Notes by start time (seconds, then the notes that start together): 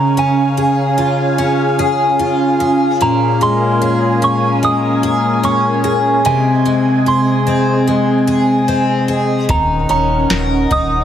Already playing: C#3 C#4 G#4 F5 G#5 A#5
0.17 C#4 G#5
0.57 G#4
0.98 F4
1.38 C#4
1.79 G#4
2.19 F4
2.60 G#4
3.01 A#2 A#4 G#5 A#5
3.41 G#3 C6
3.82 G#4
4.22 C#4 C#6
4.63 G#3 D#6
5.03 G#4
5.43 C#4 C#6
5.84 G#4
6.24 C3 C4 G#4 D#5 G#5
6.65 G#3
7.06 G#4 C6
7.47 C4
7.88 G#3
8.28 G#4
8.68 C4
9.08 G#4
9.49 D#1 D#3 C#4 A#4 F#5 A#5, kick, floor tom
9.89 D#1 C#4 A#5
10.30 D#1 A#4, snare
10.70 D#1 D#4 D#6, kick, floor tom